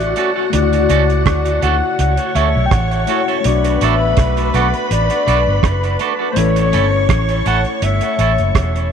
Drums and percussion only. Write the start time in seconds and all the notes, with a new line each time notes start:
0.00 closed hi-hat
0.16 closed hi-hat
0.53 closed hi-hat
0.73 closed hi-hat
0.90 closed hi-hat
1.10 closed hi-hat
1.26 kick, cross-stick, closed hi-hat
1.45 closed hi-hat
1.62 closed hi-hat
1.99 closed hi-hat
2.17 closed hi-hat
2.36 closed hi-hat
2.71 kick, cross-stick, closed hi-hat
2.91 closed hi-hat
3.07 closed hi-hat
3.28 closed hi-hat
3.44 closed hi-hat
3.64 closed hi-hat
3.81 closed hi-hat
4.17 kick, cross-stick, closed hi-hat
4.37 closed hi-hat
4.54 closed hi-hat
4.74 closed hi-hat
4.91 closed hi-hat
5.10 closed hi-hat
5.28 closed hi-hat
5.63 kick, cross-stick, closed hi-hat
5.84 closed hi-hat
5.99 closed hi-hat
6.36 closed hi-hat
6.56 closed hi-hat
6.73 closed hi-hat
7.09 kick, cross-stick, closed hi-hat
7.29 closed hi-hat
7.46 closed hi-hat
7.65 closed hi-hat
7.82 closed hi-hat
8.01 closed hi-hat
8.19 closed hi-hat
8.38 closed hi-hat
8.55 kick, cross-stick, closed hi-hat
8.76 closed hi-hat